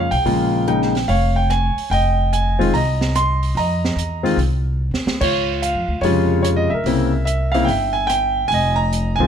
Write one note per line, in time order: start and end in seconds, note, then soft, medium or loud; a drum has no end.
0.00 0.22 G#4 medium
0.00 0.12 F5 medium
0.11 0.24 B1 medium
0.11 0.62 G5 medium
0.11 open hi-hat soft
0.25 1.04 A#1 medium
0.25 0.65 C#3 medium
0.25 0.65 G#3 medium
0.25 0.65 A#3 medium
0.25 0.65 F4 medium
0.25 open hi-hat soft
0.68 0.92 C#3 medium
0.68 0.91 G#3 medium
0.68 0.91 A#3 medium
0.68 0.92 D#4 medium
0.68 1.10 G5 medium
0.68 closed hi-hat soft
0.82 snare soft
0.95 snare soft
0.95 open hi-hat soft
1.08 1.72 F1 medium
1.08 1.87 C#5 medium
1.08 1.36 F5 medium
1.08 open hi-hat soft
1.36 1.50 G5 medium
1.50 1.92 G#5 medium
1.50 cross-stick medium
1.50 closed hi-hat soft
1.76 muted upright bass stroke soft
1.76 open hi-hat soft
1.90 2.69 F1 medium
1.90 2.70 D#5 medium
1.90 2.29 G5 medium
1.90 open hi-hat soft
2.33 2.75 G#5 medium
2.33 closed hi-hat medium
2.59 2.72 D#3 medium
2.59 2.72 G#3 medium
2.59 2.72 C4 medium
2.59 2.72 F4 medium
2.59 open hi-hat soft
2.73 3.52 C2 medium
2.73 3.53 D#5 medium
2.73 3.16 A#5 medium
2.73 open hi-hat soft
3.01 snare medium
3.15 3.57 C6 medium
3.15 cross-stick medium
3.15 closed hi-hat soft
3.43 open hi-hat soft
3.55 3.94 F2 medium
3.55 4.35 A#5 medium
3.55 open hi-hat soft
3.59 4.36 D#5 medium
3.85 snare medium
3.96 4.35 E2 medium
3.96 closed hi-hat soft
4.23 4.36 D#3 medium
4.23 4.36 G#3 medium
4.23 4.36 C4 medium
4.23 4.37 F4 medium
4.23 open hi-hat soft
4.37 4.88 C2 medium
4.37 open hi-hat soft
4.91 5.05 D#2 medium
4.91 snare soft
5.06 5.19 D2 medium
5.06 snare medium
5.21 5.72 C#2 medium
5.21 6.00 F4 medium
5.21 5.63 C#5 medium
5.21 kick medium
5.21 crash medium
5.62 6.05 F5 medium
5.62 closed hi-hat soft
5.74 5.87 F2 medium
5.88 6.01 D2 medium
6.01 6.66 F2 medium
6.01 6.67 C3 medium
6.01 6.67 C#3 medium
6.01 6.67 G#3 medium
6.01 6.67 F4 medium
6.01 6.41 C#5 medium
6.01 open hi-hat soft
6.43 6.48 C#5 medium
6.43 cross-stick medium
6.43 closed hi-hat medium
6.56 6.71 D#5 medium
6.70 6.83 C#2 medium
6.70 7.24 E5 medium
6.74 7.51 A#4 medium
6.84 7.63 C2 medium
6.84 7.10 C#3 medium
6.84 7.10 A#3 medium
6.84 7.11 C4 medium
6.84 7.11 E4 medium
6.84 open hi-hat soft
7.25 7.54 E5 medium
7.25 closed hi-hat soft
7.52 7.67 C#3 medium
7.52 7.67 A#3 medium
7.52 7.67 C4 medium
7.52 7.67 E4 medium
7.52 7.67 F5 medium
7.52 open hi-hat soft
7.65 8.46 G1 medium
7.65 7.94 G5 medium
7.65 open hi-hat soft
7.70 8.47 E5 medium
7.93 8.09 G#5 medium
8.07 8.46 G5 medium
8.07 cross-stick medium
8.07 closed hi-hat soft
8.48 9.15 F1 medium
8.48 8.77 G#5 loud
8.48 open hi-hat soft
8.54 9.27 D#5 medium
8.76 9.15 A#5 medium
8.93 closed hi-hat soft
9.16 9.27 C2 medium
9.16 9.27 G#5 medium
9.20 9.27 D#3 medium
9.20 9.27 G#3 medium
9.20 9.27 C4 medium
9.20 9.27 F4 medium